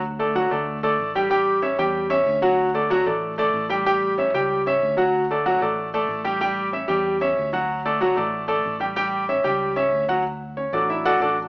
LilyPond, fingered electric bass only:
\new Staff \with { instrumentName = "Fingered electric bass" } { \clef bass \time 4/4 \key d \major \tempo 4 = 188 d,4. d,4. a,,4~ | a,,4. e,4. d,4~ | d,4. a,,4. a,,4~ | a,,4. cis,4. d,4~ |
d,4. a,,4. a,,4~ | a,,4. e,4. d,4~ | d,4. a,,4. a,,4~ | a,,4. cis,4. d,4~ |
d,4. a,,4. a,,4 | }